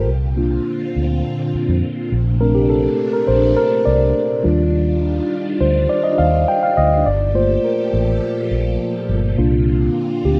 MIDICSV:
0, 0, Header, 1, 5, 480
1, 0, Start_track
1, 0, Tempo, 580833
1, 67, Time_signature, 4, 2, 24, 8
1, 8593, End_track
2, 0, Start_track
2, 0, Title_t, "Tine electric piano"
2, 0, Program_c, 0, 4
2, 0, Control_c, 0, 64, 127
2, 0, Note_on_c, 0, 67, 75
2, 0, Note_on_c, 0, 70, 92
2, 78, Control_c, 0, 64, 0
2, 85, Note_off_c, 0, 67, 0
2, 85, Note_off_c, 0, 70, 0
2, 242, Control_c, 0, 64, 127
2, 303, Note_on_c, 0, 58, 50
2, 307, Note_on_c, 0, 62, 45
2, 312, Note_on_c, 0, 65, 55
2, 625, Note_off_c, 0, 58, 0
2, 627, Note_off_c, 0, 62, 0
2, 630, Note_off_c, 0, 65, 0
2, 1759, Control_c, 0, 64, 0
2, 1910, Control_c, 0, 64, 127
2, 1983, Note_on_c, 0, 57, 55
2, 1988, Note_on_c, 0, 70, 90
2, 1990, Note_on_c, 0, 60, 52
2, 1993, Note_on_c, 0, 62, 61
2, 2106, Note_on_c, 0, 67, 75
2, 2113, Note_off_c, 0, 70, 0
2, 2229, Note_on_c, 0, 69, 79
2, 2232, Note_off_c, 0, 67, 0
2, 2306, Note_off_c, 0, 57, 0
2, 2310, Note_off_c, 0, 60, 0
2, 2312, Note_off_c, 0, 62, 0
2, 2565, Note_off_c, 0, 69, 0
2, 2588, Note_on_c, 0, 70, 87
2, 2706, Note_on_c, 0, 72, 89
2, 2713, Note_off_c, 0, 70, 0
2, 2932, Note_off_c, 0, 72, 0
2, 2946, Note_on_c, 0, 70, 97
2, 3185, Note_on_c, 0, 74, 96
2, 3197, Note_off_c, 0, 70, 0
2, 3663, Note_on_c, 0, 55, 57
2, 3668, Note_on_c, 0, 62, 51
2, 3671, Note_on_c, 0, 65, 64
2, 3683, Control_c, 0, 64, 0
2, 3821, Control_c, 0, 64, 127
2, 3876, Note_off_c, 0, 74, 0
2, 3987, Note_off_c, 0, 55, 0
2, 3990, Note_off_c, 0, 62, 0
2, 3991, Note_off_c, 0, 65, 0
2, 4633, Note_on_c, 0, 72, 78
2, 4872, Note_on_c, 0, 74, 91
2, 4880, Note_off_c, 0, 72, 0
2, 4984, Note_off_c, 0, 74, 0
2, 4988, Note_on_c, 0, 75, 91
2, 5109, Note_on_c, 0, 77, 97
2, 5114, Note_off_c, 0, 75, 0
2, 5358, Note_off_c, 0, 77, 0
2, 5358, Note_on_c, 0, 79, 99
2, 5478, Note_on_c, 0, 77, 94
2, 5479, Note_off_c, 0, 79, 0
2, 5596, Note_on_c, 0, 75, 98
2, 5599, Note_off_c, 0, 77, 0
2, 5835, Note_on_c, 0, 74, 91
2, 5842, Note_off_c, 0, 75, 0
2, 5843, Control_c, 0, 64, 0
2, 6003, Control_c, 0, 64, 127
2, 6066, Note_on_c, 0, 57, 49
2, 6070, Note_on_c, 0, 58, 42
2, 6074, Note_on_c, 0, 65, 54
2, 6077, Note_on_c, 0, 72, 73
2, 6081, Note_off_c, 0, 74, 0
2, 6316, Note_on_c, 0, 70, 65
2, 6322, Note_off_c, 0, 72, 0
2, 6388, Note_off_c, 0, 57, 0
2, 6390, Note_off_c, 0, 58, 0
2, 6392, Note_off_c, 0, 65, 0
2, 6538, Note_off_c, 0, 70, 0
2, 7747, Note_on_c, 0, 58, 60
2, 7751, Note_on_c, 0, 62, 52
2, 7756, Note_on_c, 0, 65, 59
2, 7761, Control_c, 0, 64, 0
2, 7907, Control_c, 0, 64, 127
2, 8472, Note_on_c, 0, 67, 79
2, 8593, Note_off_c, 0, 58, 0
2, 8593, Note_off_c, 0, 62, 0
2, 8593, Note_off_c, 0, 65, 0
2, 8593, Note_off_c, 0, 67, 0
2, 8593, End_track
3, 0, Start_track
3, 0, Title_t, "String machine"
3, 0, Program_c, 1, 50
3, 67, Note_on_c, 1, 65, 91
3, 68, Note_on_c, 1, 60, 76
3, 70, Note_on_c, 1, 46, 73
3, 70, Note_on_c, 1, 50, 85
3, 1734, Note_off_c, 1, 60, 0
3, 1734, Note_off_c, 1, 65, 0
3, 1735, Note_off_c, 1, 50, 0
3, 1754, Note_on_c, 1, 62, 85
3, 1755, Note_on_c, 1, 57, 73
3, 1757, Note_on_c, 1, 48, 78
3, 3641, Note_off_c, 1, 46, 0
3, 3655, Note_off_c, 1, 62, 0
3, 3656, Note_off_c, 1, 57, 0
3, 3657, Note_off_c, 1, 48, 0
3, 3672, Note_on_c, 1, 62, 75
3, 3675, Note_on_c, 1, 51, 82
3, 3675, Note_on_c, 1, 55, 75
3, 3675, Note_on_c, 1, 65, 93
3, 5811, Note_off_c, 1, 62, 0
3, 5812, Note_off_c, 1, 65, 0
3, 5813, Note_off_c, 1, 51, 0
3, 5813, Note_off_c, 1, 55, 0
3, 5830, Note_on_c, 1, 46, 75
3, 5831, Note_on_c, 1, 67, 94
3, 5831, Note_on_c, 1, 69, 74
3, 5832, Note_on_c, 1, 53, 84
3, 7731, Note_off_c, 1, 53, 0
3, 7731, Note_off_c, 1, 67, 0
3, 7731, Note_off_c, 1, 69, 0
3, 7749, Note_on_c, 1, 60, 76
3, 7750, Note_on_c, 1, 65, 92
3, 7752, Note_on_c, 1, 50, 82
3, 8593, Note_off_c, 1, 46, 0
3, 8593, Note_off_c, 1, 50, 0
3, 8593, Note_off_c, 1, 60, 0
3, 8593, Note_off_c, 1, 65, 0
3, 8593, End_track
4, 0, Start_track
4, 0, Title_t, "Fingered electric bass"
4, 0, Program_c, 2, 33
4, 69, Note_on_c, 2, 36, 99
4, 479, Note_off_c, 2, 36, 0
4, 796, Note_on_c, 2, 38, 76
4, 998, Note_off_c, 2, 38, 0
4, 1393, Note_on_c, 2, 41, 96
4, 1494, Note_off_c, 2, 41, 0
4, 1754, Note_on_c, 2, 34, 98
4, 2368, Note_off_c, 2, 34, 0
4, 2714, Note_on_c, 2, 34, 90
4, 2918, Note_off_c, 2, 34, 0
4, 3195, Note_on_c, 2, 36, 93
4, 3399, Note_off_c, 2, 36, 0
4, 3678, Note_on_c, 2, 39, 97
4, 4292, Note_off_c, 2, 39, 0
4, 4634, Note_on_c, 2, 38, 80
4, 4839, Note_off_c, 2, 38, 0
4, 5116, Note_on_c, 2, 39, 95
4, 5320, Note_off_c, 2, 39, 0
4, 5601, Note_on_c, 2, 38, 84
4, 5802, Note_off_c, 2, 38, 0
4, 5837, Note_on_c, 2, 31, 103
4, 6246, Note_off_c, 2, 31, 0
4, 6557, Note_on_c, 2, 33, 89
4, 6760, Note_off_c, 2, 33, 0
4, 7034, Note_on_c, 2, 34, 90
4, 7238, Note_off_c, 2, 34, 0
4, 7513, Note_on_c, 2, 31, 84
4, 7717, Note_off_c, 2, 31, 0
4, 7754, Note_on_c, 2, 36, 105
4, 8162, Note_off_c, 2, 36, 0
4, 8470, Note_on_c, 2, 38, 79
4, 8593, Note_off_c, 2, 38, 0
4, 8593, End_track
5, 0, Start_track
5, 0, Title_t, "Muted fingered electric bass strokes"
5, 1276, Note_on_c, 9, 29, 49
5, 1358, Note_off_c, 9, 29, 0
5, 8593, End_track
0, 0, End_of_file